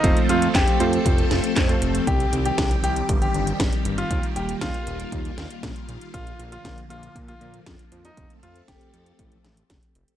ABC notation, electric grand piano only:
X:1
M:4/4
L:1/16
Q:1/4=118
K:Fmix
V:1 name="Electric grand piano"
[A,CFc]6 [A,CFc]6- [A,CFc] [A,CFc]3 | z16 | z16 | z16 |
z16 |]